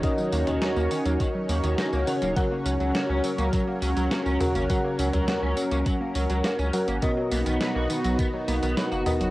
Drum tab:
HH |x-oxx-oxx-oxx-ox|x-oxx-oxx-oxx-ox|x-oxx-oxx-oxx-ox|x-oxx-oxx-oxx-ox|
TB |xxxxxxxxx-xxxxxx|x-xxx-xxx-xxxxxx|x-xxx-xxx-xxxxxx|x-xxx-xxx-xxxxxx|
SD |----o-------o---|----o-------o---|----o-------o---|----o-------o---|
T2 |---o------------|--------------o-|---o------------|--------------o-|
BD |o-------o-------|o-------o-------|o-------o-------|o-------o-------|